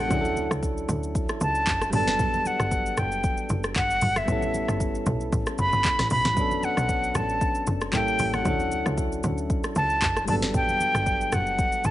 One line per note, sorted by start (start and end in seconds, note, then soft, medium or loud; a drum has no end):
0.00 0.13 G3 medium
0.00 0.10 A#3 medium
0.00 0.09 C#4 medium
0.00 0.11 E4 medium
0.00 0.12 A4 medium
0.00 0.51 F#5 loud
0.08 0.49 D2 loud
0.08 1.88 F#3 medium
0.08 1.89 C#4 medium
0.08 1.90 D4 medium
0.08 kick loud
0.08 low conga medium
0.08 shaker medium
0.13 1.91 E4 medium
0.13 0.20 G#4 medium
0.21 1.95 A4 medium
0.21 high conga medium
0.21 shaker soft
0.37 high conga medium
0.37 shaker medium
0.51 0.87 C#2 medium
0.51 cross-stick medium
0.51 shaker medium
0.63 kick medium
0.63 shaker medium
0.78 shaker medium
0.89 1.27 D2 medium
0.89 low conga medium
0.89 shaker loud
1.03 shaker medium
1.15 kick loud
1.15 shaker medium
1.29 cross-stick loud
1.29 shaker medium
1.41 1.66 C#2 medium
1.41 1.90 A5 loud
1.41 high conga medium
1.41 shaker medium
1.55 shaker medium
1.67 1.92 F#1 medium
1.67 kick medium
1.67 clap loud
1.67 high conga medium
1.67 shaker medium
1.82 cross-stick loud
1.82 shaker medium
1.90 2.18 G1 loud
1.90 3.96 G3 medium
1.90 3.97 B3 medium
1.90 3.98 D4 medium
1.90 open hi-hat medium
1.90 low conga medium
1.90 shaker loud
1.95 3.99 F#3 medium
1.95 4.00 A4 medium
1.95 2.48 A5 loud
2.07 snare medium
2.07 high conga medium
2.07 shaker medium
2.19 kick loud
2.19 low conga medium
2.19 shaker medium
2.34 high conga medium
2.34 shaker soft
2.45 3.01 F#5 loud
2.45 high conga medium
2.45 shaker medium
2.60 2.96 G1 medium
2.60 cross-stick medium
2.60 shaker medium
2.71 kick loud
2.71 shaker medium
2.86 shaker medium
2.97 3.36 F#1 medium
2.97 3.51 G5 medium
2.97 cross-stick loud
2.97 low conga medium
2.97 shaker loud
3.12 shaker medium
3.24 kick loud
3.24 shaker medium
3.37 shaker medium
3.49 3.75 F#1 medium
3.49 high conga medium
3.49 shaker medium
3.64 cross-stick loud
3.64 shaker medium
3.76 4.01 G1 loud
3.76 4.19 F#5 loud
3.76 kick loud
3.76 clap loud
3.76 high conga medium
3.76 shaker medium
3.90 shaker medium
4.01 4.27 G1 medium
4.01 open hi-hat medium
4.01 low conga medium
4.01 shaker loud
4.16 4.69 E5 loud
4.16 cross-stick loud
4.16 high conga medium
4.16 shaker medium
4.25 4.66 A1 loud
4.25 6.31 G3 medium
4.25 6.32 B3 medium
4.25 6.33 C#4 medium
4.25 kick loud
4.25 low conga medium
4.25 shaker medium
4.30 6.34 E4 medium
4.30 6.35 A4 medium
4.42 high conga medium
4.42 shaker soft
4.54 high conga medium
4.54 shaker medium
4.68 5.04 G1 medium
4.68 cross-stick medium
4.68 shaker medium
4.80 kick medium
4.80 shaker medium
4.95 shaker medium
5.06 5.31 B1 loud
5.06 low conga medium
5.06 shaker medium
5.21 shaker medium
5.33 5.46 A1 loud
5.33 kick loud
5.33 shaker medium
5.46 cross-stick loud
5.46 shaker medium
5.58 5.72 F#1 medium
5.58 6.08 B5 loud
5.58 high conga medium
5.58 shaker medium
5.72 5.84 G1 medium
5.72 shaker medium
5.85 kick loud
5.85 clap loud
5.85 high conga medium
5.85 shaker medium
5.99 6.10 A1 loud
5.99 cross-stick loud
5.99 snare medium
5.99 shaker medium
6.10 6.24 B1 loud
6.10 6.66 B5 loud
6.10 open hi-hat medium
6.10 low conga medium
6.10 shaker loud
6.25 6.36 A1 loud
6.25 snare medium
6.25 high conga medium
6.25 shaker medium
6.34 7.89 F#3 medium
6.34 7.90 B3 medium
6.34 7.90 C#4 medium
6.34 kick loud
6.34 low conga medium
6.34 shaker medium
6.39 7.91 D4 medium
6.39 7.92 A4 medium
6.51 high conga medium
6.51 shaker soft
6.63 7.18 F#5 loud
6.63 high conga medium
6.63 shaker medium
6.77 7.13 B1 medium
6.77 cross-stick medium
6.77 shaker medium
6.89 kick medium
6.89 shaker medium
7.04 shaker medium
7.15 7.53 A1 loud
7.15 7.68 A5 medium
7.15 cross-stick loud
7.15 low conga medium
7.15 shaker loud
7.29 shaker medium
7.41 kick loud
7.41 shaker medium
7.55 shaker medium
7.67 7.92 F#1 medium
7.67 high conga medium
7.67 shaker medium
7.81 cross-stick loud
7.81 shaker medium
7.92 8.18 A1 loud
7.92 8.45 G3 medium
7.92 8.45 A#3 medium
7.92 8.43 C#4 medium
7.92 8.46 E4 medium
7.92 8.47 A4 medium
7.92 8.36 G5 loud
7.92 kick loud
7.92 clap loud
7.92 high conga medium
7.92 shaker medium
8.08 shaker medium
8.19 8.44 A1 loud
8.19 open hi-hat medium
8.19 low conga medium
8.19 shaker loud
8.34 8.86 F#5 loud
8.34 cross-stick loud
8.34 high conga medium
8.34 shaker medium
8.43 8.84 D2 loud
8.43 10.23 F#3 medium
8.43 10.24 C#4 medium
8.43 10.25 D4 medium
8.43 kick loud
8.43 low conga medium
8.43 shaker medium
8.48 10.26 E4 medium
8.48 10.27 A4 medium
8.60 high conga medium
8.60 shaker soft
8.71 high conga medium
8.71 shaker medium
8.86 9.22 C#2 medium
8.86 cross-stick medium
8.86 shaker medium
8.98 kick medium
8.98 shaker medium
9.12 shaker medium
9.23 9.62 D2 medium
9.23 low conga medium
9.23 shaker medium
9.38 shaker medium
9.50 kick loud
9.50 shaker medium
9.64 cross-stick loud
9.64 shaker medium
9.75 10.01 C#2 medium
9.75 10.25 A5 loud
9.75 high conga medium
9.75 shaker medium
9.90 shaker medium
10.02 10.27 F#1 medium
10.02 kick loud
10.02 clap loud
10.02 high conga medium
10.02 shaker medium
10.17 cross-stick loud
10.17 shaker medium
10.25 10.53 G1 loud
10.25 11.91 G3 medium
10.25 10.34 A#3 soft
10.25 11.91 D4 medium
10.25 open hi-hat medium
10.25 low conga medium
10.25 shaker loud
10.29 11.91 F#3 medium
10.29 11.91 B3 medium
10.29 11.91 A4 medium
10.29 10.35 A5 loud
10.42 snare medium
10.42 high conga medium
10.42 shaker medium
10.54 11.35 G5 loud
10.54 kick loud
10.54 low conga medium
10.54 shaker medium
10.69 high conga medium
10.69 shaker soft
10.80 high conga medium
10.80 shaker medium
10.95 11.30 G1 medium
10.95 cross-stick medium
10.95 shaker medium
11.06 kick medium
11.06 shaker medium
11.21 shaker medium
11.32 11.71 F#1 medium
11.32 11.87 F#5 loud
11.32 cross-stick loud
11.32 low conga medium
11.32 shaker loud
11.47 shaker medium
11.59 kick loud
11.59 shaker medium
11.72 shaker medium
11.84 11.91 F#1 medium
11.84 11.91 A5 loud
11.84 high conga medium
11.84 shaker medium